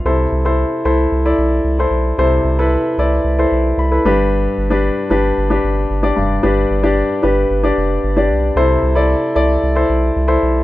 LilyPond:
<<
  \new Staff \with { instrumentName = "Grand piano" } { \time 4/4 \key g \mixolydian \tempo 4 = 113 << { r1 | r2. b''4 | r1 | r1 |
r1 | } \\ { <e' a' c''>8 r16 <e' a' c''>8 r16 <e' a' c''>8 r16 <e' a' d''>8. r16 <e' a' c''>8 r16 | <e' a' c''>8 r16 <e' a' b'>8 r16 <e' a' d''>8 r16 <e' a' c''>8. r16 <e' a' b'>16 <d' g' b'>8~ | <d' g' b'>8 r16 <d' g' b'>8 r16 <d' g' b'>8 r16 <d' g' b'>8. r16 <d' g' d''>8 r16 | <d' g' b'>8 r16 <d' g' d''>8 r16 <d' g' b'>8 r16 <d' g' d''>8. r16 <d' g' d''>8 r16 |
<e' a' c''>8 r16 <e' a' d''>8 r16 <e' a' d''>8 r16 <e' a' c''>8. r16 <e' a' c''>8 r16 | } >> }
  \new Staff \with { instrumentName = "Grand piano" } { \clef bass \time 4/4 \key g \mixolydian c4. r2 r8 | c4. r2 g,8~ | g,4 r2 r8 g,8~ | g,4 r2. |
c4. r2 r8 | }
  \new Staff \with { instrumentName = "Sub bass" } { \clef bass \time 4/4 \key g \mixolydian c,8 c,8. r16 c,8 c,8 b,,8 c,8 b,,8 | c,8 c,8. r16 c,8 c,8 b,,8 c,8 g,,8~ | g,,8 g,,8. r16 g,,8 g,,8 g,,8 g,,8 f,,8 | g,,8 g,,8. r16 g,,8 g,,8 f,,8 g,,8 b,,8 |
c,8 c,8. r16 c,8 c,8 b,,8 c,8 b,,8 | }
>>